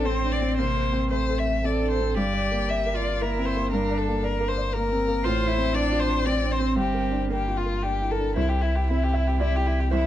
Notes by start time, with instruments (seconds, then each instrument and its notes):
Already playing: sub bass A1, felt piano A2 C4 A4 C5
0.05 cello C4, felt piano C4, violin C5
0.24 felt piano D4
0.32 violin D5
0.42 felt piano C4
0.58 felt piano C3, cello A#3, violin C5
0.77 felt piano C5
0.93 felt piano C4
1.11 cello A3, violin C5, felt piano C5
1.30 felt piano A4
1.39 violin E5
1.46 felt piano C5
1.64 felt piano C4, cello A4, violin D5
1.83 felt piano D4
1.91 violin C5
2.00 felt piano C4
2.14 sub bass G1, felt piano G2, cello G4, violin D5
2.33 felt piano D5
2.51 felt piano A#3
2.69 felt piano D5, violin E5
2.86 felt piano A#4
2.95 cello F4, violin D5
3.04 felt piano D5
3.21 felt piano A#3, cello E4, violin A#4
3.39 felt piano C4
3.46 violin C5
3.56 felt piano A#3
3.71 felt piano G2, cello D4, violin A#4
3.90 felt piano D5
3.97 violin A4
4.08 felt piano A#3
4.23 violin A#4, felt piano D5
4.40 felt piano A#4
4.48 violin C5
4.57 felt piano D5
4.73 felt piano A#3, violin A#4
4.92 felt piano C4
5.08 felt piano A#3
5.24 sub bass A1, felt piano A2, cello F4, violin C5
5.42 felt piano C5
5.48 cello E4
5.58 felt piano C4
5.74 cello D4, felt piano C5, violin D5
5.92 felt piano F4
6.00 violin C5
6.25 cello C4, felt piano C4, violin D5
6.44 felt piano D4
6.52 violin C5
6.60 felt piano C4
6.76 sub bass G1, felt piano G2, cello C4, violin G4
6.94 felt piano A#4
7.11 felt piano D4
7.30 cello A#3, violin G4, felt piano A#4
7.48 felt piano F4
7.57 violin F4
7.66 felt piano A#4
7.83 felt piano D4, violin G4
8.01 felt piano E4
8.11 violin A4, felt piano A#4
8.19 felt piano D4
8.34 felt piano C2 C5, sub bass C2, cello E4, violin E4
8.49 violin G4
8.62 violin E4
8.75 violin G4
8.90 felt piano C4 E4 C5, violin E4
9.03 violin G4
9.13 violin E4, felt piano E5
9.27 violin G4
9.40 felt piano C4 E4 C5 D5, violin E4, cello G4
9.56 violin G4
9.66 violin E4
9.80 violin G4
9.91 felt piano C2 C5, cello E4, violin E4